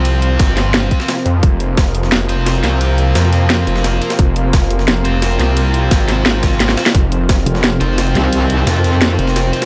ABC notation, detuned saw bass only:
X:1
M:4/4
L:1/8
Q:1/4=174
K:Cphr
V:1 name="Detuned saw bass" clef=bass
C,,2 G,,,3 z2 F,, | F,,,3 F,,,2 F,,,2 C,,- | C,,2 F,,3 F,,,2 z | F,,,3 F,,,2 F,,,2 C,,- |
C,,2 A,,,4- A,,, z | F,,,3 z2 F,,,2 z | z4 z F,,,2 z |]